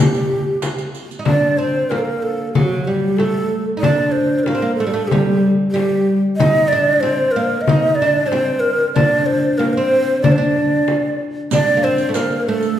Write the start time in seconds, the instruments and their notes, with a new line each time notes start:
Already playing: ney G4
0.15 riq
0.62 riq, frame drum
0.78 riq
0.95 riq
1.11 riq
1.19 oud D#4
1.25 oud D4, ney D5, frame drum
1.58 oud C4, ney C5
1.90 oud A#3, ney A#4, frame drum
1.98 ney A4
2.05 ney A#4
2.22 ney A4
2.53 oud F#3, ney F#4, frame drum
2.85 oud G3, ney G4
3.17 oud A3, ney A4, frame drum
3.77 oud D#4, ney D5
3.83 oud D4, frame drum
4.12 ney C5
4.39 ney C5
4.44 oud A#3, ney A#4, frame drum
4.55 oud C4
4.62 oud A#3
4.76 ney A4
4.80 oud A3
4.87 oud G3
4.94 oud A3
5.08 ney G4, frame drum
5.12 oud G3
5.71 oud G3, ney G4
5.76 frame drum
6.37 oud D#4, ney D#5, frame drum
6.68 ney D5
6.72 oud D4
7.00 oud C4, ney C5, frame drum
7.31 ney A#4
7.36 oud A#3
7.61 ney D#5
7.68 oud D#4, frame drum
7.95 ney D5
8.02 oud D4
8.26 oud D4, ney C5
8.32 oud C4, frame drum
8.60 ney A#4
8.93 oud D4, ney D5, frame drum
9.26 ney C5
9.58 oud A#3, ney A#4, frame drum
9.73 oud C4, ney C5
10.22 oud D4, ney D5, frame drum
10.32 ney C5
10.37 oud D4, ney D5
10.88 frame drum
11.51 oud D4, ney D5, riq, frame drum
11.67 riq
11.77 oud A#3
11.84 oud C4, ney C5
11.98 riq
12.09 oud A3
12.14 oud A#3, ney A#4, riq, frame drum
12.47 oud A3, ney A4
12.62 riq